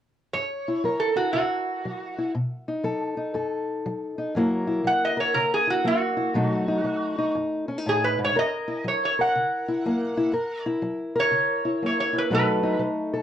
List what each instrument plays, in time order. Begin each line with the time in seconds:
0.33 steel-string acoustic guitar F#2, resonator guitar played with a steel bar C#5
0.68 steel-string acoustic guitar E4
0.84 steel-string acoustic guitar F#3 A#4
1.00 resonator guitar played with a steel bar A4
1.16 steel-string acoustic guitar E4, resonator guitar played with a steel bar F#4
1.33 steel-string acoustic guitar C#3 E4, resonator guitar played with a steel bar F#4
1.85 steel-string acoustic guitar F#3
2.18 steel-string acoustic guitar E4
2.35 steel-string acoustic guitar B2
2.68 steel-string acoustic guitar D#4
2.84 steel-string acoustic guitar F#3 A4
3.17 steel-string acoustic guitar D#4
3.34 steel-string acoustic guitar F#2 A4
3.86 steel-string acoustic guitar F#3
4.18 steel-string acoustic guitar D#4
4.35 steel-string acoustic guitar F#2 F#3 A#3 E4 A#4
4.67 steel-string acoustic guitar E4
4.84 steel-string acoustic guitar F#3, resonator guitar played with a steel bar F#5
5.05 resonator guitar played with a steel bar D#5
5.17 steel-string acoustic guitar A#4, resonator guitar played with a steel bar C#5
5.34 steel-string acoustic guitar C#3, resonator guitar played with a steel bar A#4
5.54 resonator guitar played with a steel bar G#4
5.67 steel-string acoustic guitar E4, resonator guitar played with a steel bar F#4
5.84 steel-string acoustic guitar F#3 A#3, resonator guitar played with a steel bar F#4
6.17 steel-string acoustic guitar E4
6.34 steel-string acoustic guitar B2 F#3 A3 D#4
6.68 steel-string acoustic guitar D#4
6.84 steel-string acoustic guitar F#3
7.18 steel-string acoustic guitar D#4
7.35 steel-string acoustic guitar F#2
7.68 steel-string acoustic guitar C#4
7.78 steel-string acoustic guitar D#4
7.86 steel-string acoustic guitar A2, resonator guitar played with a steel bar G#4
8.05 resonator guitar played with a steel bar B4
8.19 steel-string acoustic guitar G#2
8.25 resonator guitar played with a steel bar C#5
8.35 steel-string acoustic guitar F#2 A#4, resonator guitar played with a steel bar D#5
8.68 steel-string acoustic guitar E4
8.84 steel-string acoustic guitar F#3, resonator guitar played with a steel bar C#5
9.05 resonator guitar played with a steel bar C#5
9.19 steel-string acoustic guitar A#4, resonator guitar played with a steel bar F#5
9.35 steel-string acoustic guitar C#3
9.68 steel-string acoustic guitar E4
9.86 steel-string acoustic guitar F#3 A#3
10.17 steel-string acoustic guitar E4
10.32 steel-string acoustic guitar F#2 A#4
10.66 steel-string acoustic guitar E4
10.82 steel-string acoustic guitar F#3
11.15 steel-string acoustic guitar A#4
11.20 resonator guitar played with a steel bar C#5
11.31 steel-string acoustic guitar C#3
11.65 steel-string acoustic guitar E4
11.82 steel-string acoustic guitar F#3 A#3, resonator guitar played with a steel bar C#5
12.00 resonator guitar played with a steel bar C#5
12.13 steel-string acoustic guitar E4
12.18 resonator guitar played with a steel bar B4
12.30 steel-string acoustic guitar B2 F#3 A3 D#4 A4
12.34 resonator guitar played with a steel bar B4
12.63 steel-string acoustic guitar D#4
12.79 steel-string acoustic guitar F#3
13.14 steel-string acoustic guitar A4